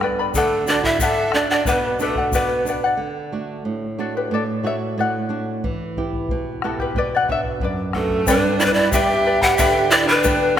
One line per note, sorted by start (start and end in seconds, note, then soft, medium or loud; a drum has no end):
0.00 0.31 G2 medium
0.00 0.34 B3 medium
0.00 0.19 B4 medium
0.00 0.19 D5 medium
0.00 0.19 G5 medium
0.00 bombo rim medium
0.04 0.18 B5 medium
0.19 0.36 B4 soft
0.19 0.36 D5 medium
0.19 0.35 B5 medium
0.34 1.01 D3 medium
0.34 0.66 A3 medium
0.34 0.66 A4 medium
0.34 0.68 A4 medium
0.34 0.68 D5 medium
0.34 0.69 F#5 medium
0.34 bombo low medium
0.34 shaker medium
0.67 0.83 D4 medium
0.67 1.00 F#4 medium
0.67 0.85 A4 medium
0.67 0.83 D5 loud
0.67 0.85 D5 medium
0.67 0.85 F#5 medium
0.67 shaker medium
0.84 0.99 E4 medium
0.84 1.00 E5 medium
0.84 1.01 F#5 medium
0.84 bombo low medium
0.88 1.02 D5 soft
0.99 1.33 D3 medium
0.99 1.34 A4 medium
0.99 1.34 D5 medium
0.99 1.36 E5 loud
0.99 1.35 F#5 medium
0.99 bombo low medium
0.99 shaker medium
1.03 1.37 A4 medium
1.32 1.50 D4 medium
1.32 1.66 F#4 medium
1.32 1.51 A4 medium
1.32 1.50 D5 medium
1.32 1.51 D5 medium
1.32 bombo rim medium
1.37 1.50 F#5 medium
1.50 1.66 D4 medium
1.50 1.66 D5 medium
1.50 1.67 D5 soft
1.50 1.67 F#5 medium
1.65 2.95 B2 medium
1.65 1.98 B3 medium
1.65 1.98 B4 medium
1.65 2.00 B4 medium
1.65 2.01 D5 medium
1.65 2.01 F#5 medium
1.65 bombo low medium
1.65 shaker medium
1.99 2.32 A3 medium
1.99 2.32 D4 medium
1.99 2.31 A4 medium
1.99 2.17 B4 medium
1.99 2.17 D5 medium
1.99 2.17 F#5 medium
1.99 shaker medium
2.15 2.33 D5 soft
2.15 2.34 F#5 soft
2.15 bombo low medium
2.32 2.80 B3 medium
2.32 2.65 F#4 medium
2.32 2.67 B4 medium
2.32 2.80 B4 medium
2.32 2.67 D5 medium
2.32 2.67 F#5 medium
2.32 bombo low medium
2.32 shaker medium
2.65 2.98 D4 medium
2.65 2.84 B4 medium
2.65 2.84 D5 medium
2.65 shaker medium
2.70 2.83 F#5 medium
2.84 3.01 D5 soft
2.84 3.00 F#5 medium
2.97 3.62 D3 medium
3.32 3.85 A3 soft
3.32 3.86 D4 soft
3.32 3.85 F#4 soft
3.65 4.29 A2 medium
3.98 4.51 A3 soft
3.98 4.51 D4 soft
3.98 4.52 F#4 medium
3.98 4.15 F#4 soft
3.98 4.16 A4 medium
4.17 4.31 G4 medium
4.17 4.33 B4 medium
4.31 4.95 A2 medium
4.31 4.43 A4 medium
4.31 4.42 D5 medium
4.63 5.17 A3 soft
4.63 5.17 D4 soft
4.63 5.17 F#4 medium
4.63 4.75 C#5 medium
4.63 4.75 E5 medium
4.98 5.62 A2 medium
4.98 5.45 D5 medium
4.98 5.45 F#5 medium
5.29 5.56 A3 soft
5.29 5.57 D4 soft
5.29 5.57 F#4 soft
5.64 6.28 E3 medium
5.64 bombo low medium
5.97 6.50 B3 soft
5.97 6.50 E4 soft
5.97 6.50 G4 soft
5.97 bombo low medium
6.13 bombo low soft
6.29 6.95 B2 medium
6.29 bombo low medium
6.62 6.90 B3 soft
6.62 6.90 E4 soft
6.62 6.79 F#4 medium
6.62 6.90 G4 medium
6.62 6.81 A4 medium
6.62 bombo rim medium
6.79 6.95 G4 medium
6.79 6.96 B4 medium
6.79 bombo low medium
6.95 7.60 B2 medium
6.95 7.12 B4 medium
6.95 7.13 D5 medium
6.95 bombo low medium
7.15 7.29 D5 medium
7.15 7.30 F#5 medium
7.28 7.81 B3 soft
7.28 7.82 D4 soft
7.28 7.82 F#4 medium
7.28 7.38 C#5 medium
7.28 7.40 E5 medium
7.28 bombo low medium
7.44 bombo low soft
7.60 8.25 F#2 medium
7.60 8.08 B4 medium
7.60 bombo low medium
7.64 8.09 D5 medium
7.93 8.28 A3 medium
7.93 8.21 B3 soft
7.93 8.22 D4 soft
7.93 8.22 F#4 medium
7.93 8.30 A4 medium
7.93 bombo rim soft
7.93 bombo low soft
8.09 bombo low soft
8.27 9.55 G2 medium
8.27 8.61 D4 medium
8.27 8.61 G4 medium
8.27 8.61 B4 medium
8.27 8.61 D5 medium
8.27 8.60 G5 medium
8.27 8.61 B5 medium
8.27 bombo low medium
8.27 shaker loud
8.59 8.66 E4 medium
8.59 8.77 B4 medium
8.59 8.67 D5 loud
8.59 8.76 D5 medium
8.59 8.77 G5 medium
8.59 8.76 B5 medium
8.59 shaker medium
8.64 8.74 D4 medium
8.64 8.75 B4 medium
8.72 8.92 E4 medium
8.72 8.92 D5 loud
8.78 8.93 B4 soft
8.78 8.94 D5 medium
8.78 8.94 B5 medium
8.92 9.57 B3 medium
8.92 9.57 D4 soft
8.92 9.44 G4 medium
8.92 9.27 G4 medium
8.92 9.57 G4 medium
8.92 9.25 B4 medium
8.92 9.26 D5 medium
8.92 9.44 E5 loud
8.92 9.25 G5 medium
8.92 9.26 B5 medium
8.92 bombo low medium
8.92 shaker loud
9.26 9.42 B4 medium
9.26 9.41 D5 medium
9.26 9.43 G5 medium
9.26 9.40 B5 medium
9.41 9.58 G4 medium
9.41 9.59 B4 soft
9.41 9.59 D5 medium
9.41 9.59 F#5 loud
9.41 9.58 B5 medium
9.41 bombo low medium
9.57 10.60 D3 medium
9.57 9.92 G4 loud
9.57 9.92 G4 medium
9.57 9.91 B4 medium
9.57 9.92 D5 medium
9.57 9.92 E5 loud
9.57 9.91 G5 medium
9.57 9.92 B5 medium
9.57 bombo low medium
9.57 shaker loud
9.90 10.07 E4 medium
9.90 10.08 B4 medium
9.90 10.10 D5 loud
9.90 10.08 D5 medium
9.90 10.08 G5 medium
9.90 10.07 B5 medium
9.90 shaker medium
10.06 10.58 D4 medium
10.06 10.59 B4 loud
10.06 10.23 B4 soft
10.06 10.24 D5 medium
10.06 10.24 B5 medium
10.24 10.60 B3 medium
10.24 10.60 D4 soft
10.24 10.57 G4 medium
10.24 10.60 G4 medium
10.24 10.57 B4 medium
10.24 10.58 D5 medium
10.24 10.57 G5 medium
10.24 10.58 B5 medium
10.24 bombo low medium
10.24 shaker loud
10.56 10.60 A3 medium